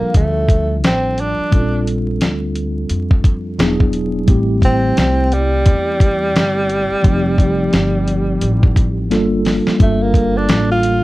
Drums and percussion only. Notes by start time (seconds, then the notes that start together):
0.14 kick, closed hi-hat
0.49 kick, closed hi-hat
0.84 snare, closed hi-hat
1.18 closed hi-hat
1.52 kick, closed hi-hat
1.87 closed hi-hat
2.21 snare, closed hi-hat
2.56 closed hi-hat
2.90 closed hi-hat
3.11 kick
3.24 kick, closed hi-hat
3.59 snare, closed hi-hat
3.80 kick
3.93 closed hi-hat
4.28 kick, closed hi-hat
4.62 kick, closed hi-hat
4.97 snare, closed hi-hat
5.32 closed hi-hat
5.66 kick, closed hi-hat
6.00 kick, closed hi-hat
6.36 snare, closed hi-hat
6.69 closed hi-hat
7.04 kick, closed hi-hat
7.38 kick, closed hi-hat
7.73 snare, closed hi-hat
8.08 closed hi-hat
8.41 closed hi-hat
8.63 kick
8.76 kick, closed hi-hat
9.11 snare, closed hi-hat
9.45 snare, open hi-hat
9.67 snare
9.80 kick, closed hi-hat
10.14 kick, closed hi-hat
10.49 snare, closed hi-hat
10.83 closed hi-hat